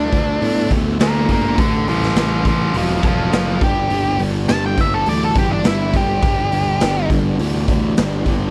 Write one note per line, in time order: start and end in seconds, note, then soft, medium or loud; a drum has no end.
0.00 1.56 A3 medium
0.00 0.69 D4 medium
0.00 1.56 D4 medium
0.00 1.56 F4 medium
0.00 1.56 A4 medium
0.12 0.39 D2 medium
0.12 0.39 D3 medium
0.12 0.39 A3 medium
0.12 kick medium
0.12 open hi-hat medium
0.41 0.68 A2 loud
0.41 0.68 D3 medium
0.41 0.68 B3 medium
0.41 open hi-hat medium
0.70 0.97 D2 medium
0.70 0.97 D3 medium
0.70 0.97 B3 medium
0.70 kick medium
0.70 open hi-hat medium
0.99 1.26 D2 medium
0.99 1.26 D3 medium
0.99 1.26 A3 medium
0.99 1.30 F4 medium
0.99 1.30 D5 medium
0.99 snare loud
0.99 open hi-hat medium
1.29 1.55 G1 medium
1.29 1.56 D3 medium
1.29 1.56 A3 medium
1.29 1.58 F4 medium
1.29 1.59 D5 medium
1.29 kick medium
1.29 open hi-hat medium
1.57 2.10 A1 loud
1.57 1.85 A2 medium
1.57 1.85 E3 medium
1.57 3.60 A3 medium
1.57 3.60 C4 medium
1.57 3.59 E4 medium
1.57 3.60 A4 medium
1.57 1.86 A4 medium
1.57 1.87 D5 medium
1.57 kick loud
1.57 open hi-hat medium
1.88 2.14 A2 medium
1.88 2.14 E3 medium
1.88 2.16 E4 medium
1.88 2.17 C5 medium
1.88 open hi-hat medium
2.03 snare soft
2.16 2.42 A1 medium
2.16 2.43 A2 medium
2.16 2.43 E3 medium
2.16 2.44 E4 medium
2.16 2.46 C5 medium
2.16 snare loud
2.16 open hi-hat medium
2.45 2.71 A1 medium
2.45 2.72 A2 medium
2.45 2.72 E3 medium
2.45 2.74 E4 medium
2.45 2.75 C5 medium
2.45 kick medium
2.45 open hi-hat medium
2.74 3.00 E1 medium
2.74 3.00 A2 medium
2.74 3.01 F#3 medium
2.74 3.03 C4 medium
2.74 3.04 A4 medium
2.74 open hi-hat medium
3.03 3.30 E1 medium
3.03 3.30 A2 medium
3.03 3.30 F#3 medium
3.03 kick medium
3.03 open hi-hat medium
3.07 3.33 C4 medium
3.07 3.33 A4 medium
3.32 3.58 F#1 medium
3.32 3.58 A2 medium
3.32 3.59 E3 loud
3.32 3.61 C4 medium
3.32 3.62 A4 medium
3.32 snare loud
3.32 open hi-hat medium
3.61 3.88 G1 medium
3.61 3.88 G2 medium
3.61 3.88 D3 medium
3.61 5.92 G3 medium
3.61 5.92 B3 medium
3.61 5.92 D4 medium
3.61 5.92 G4 medium
3.61 4.19 G4 loud
3.61 kick loud
3.61 open hi-hat soft
3.90 4.17 G1 loud
3.90 4.17 G2 medium
3.90 4.17 D3 medium
3.90 open hi-hat medium
4.19 4.46 G1 medium
4.19 4.46 G2 medium
4.19 4.46 D3 medium
4.19 open hi-hat soft
4.48 4.75 G1 medium
4.48 4.75 G2 medium
4.48 4.75 D3 loud
4.48 4.63 A5 loud
4.48 snare loud
4.48 open hi-hat medium
4.66 4.81 G5 medium
4.78 5.04 G1 medium
4.78 5.05 G2 medium
4.78 5.05 D3 medium
4.78 4.94 E5 loud
4.78 kick medium
4.78 open hi-hat medium
4.94 5.08 A4 medium
5.06 5.33 D2 loud
5.06 5.34 G2 medium
5.06 5.34 E3 medium
5.06 5.22 D5 loud
5.06 open hi-hat medium
5.24 5.37 A4 medium
5.35 5.62 G1 medium
5.35 5.63 G2 medium
5.35 5.63 E3 medium
5.35 5.51 G4 medium
5.35 kick medium
5.35 open hi-hat medium
5.52 5.65 D4 medium
5.64 5.91 G1 loud
5.64 5.91 G2 loud
5.64 5.92 D3 medium
5.64 5.94 E4 medium
5.64 snare loud
5.64 open hi-hat medium
5.93 6.20 G1 medium
5.93 6.21 G2 medium
5.93 6.21 D3 medium
5.93 8.51 G3 medium
5.93 8.51 B3 medium
5.93 8.51 D4 medium
5.93 7.08 G4 loud
5.93 kick medium
5.93 open hi-hat medium
6.22 6.75 G1 medium
6.22 6.49 G2 medium
6.22 6.50 D3 loud
6.22 kick loud
6.22 open hi-hat medium
6.52 6.79 G2 medium
6.52 6.79 D3 medium
6.52 open hi-hat medium
6.80 7.08 G1 medium
6.80 7.07 G2 medium
6.80 7.08 D3 loud
6.80 snare loud
6.80 open hi-hat medium
7.10 7.36 G1 medium
7.10 7.37 G2 medium
7.10 7.37 D3 medium
7.10 kick medium
7.10 open hi-hat medium
7.39 7.65 D2 loud
7.39 7.66 G2 medium
7.39 7.66 E3 medium
7.39 open hi-hat medium
7.68 7.94 D2 medium
7.68 7.95 G2 medium
7.68 7.95 E3 medium
7.68 kick medium
7.68 open hi-hat medium
7.97 8.23 G1 loud
7.97 8.24 G2 medium
7.97 8.24 D3 medium
7.97 snare loud
7.97 open hi-hat medium
8.26 8.51 G1 medium
8.26 8.51 G2 medium
8.26 8.51 D3 medium
8.26 kick medium
8.26 open hi-hat medium